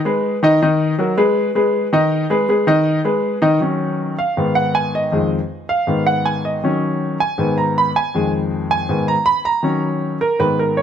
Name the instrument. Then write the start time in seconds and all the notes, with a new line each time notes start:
grand piano
0.05 G#3 G#4 B4
0.43 D#3 D#4 D#5
0.62 D#3 D#4 D#5
0.99 F#3 F#4 A#4
1.17 G#3 G#4 B4
1.55 G#3 G#4 B4
1.93 D#3 D#4 D#5
2.30 G#3 G#4 B4
2.49 G#3 G#4 B4
2.67 D#3 D#4 D#5
3.05 G#3 G#4 B4
3.42 D#3 D#4 D#5
3.61 D#3 F#3 C#4
4.19 F5
4.37 G#2 D#3 B3
4.55 F#5
4.75 G#5
4.95 D#5
5.12 F2 D#3 G#3
5.69 F5
5.87 G#2 D#3 B3
6.07 F#5
6.25 G#5
6.45 D#5
6.64 D#3 F#3 C#4
7.20 G#5
7.38 G#2 D#3 B3
7.58 A#5
7.78 B5
7.96 G#5
8.14 F2 D#3 G#3
8.71 G#5
8.89 G#2 D#3 B3
9.08 A#5
9.26 B5
9.45 A#5
9.63 D#3 F#3 C#4
10.21 A#4
10.39 G#2 D#3 B3 B4
10.59 A#4
10.77 C#5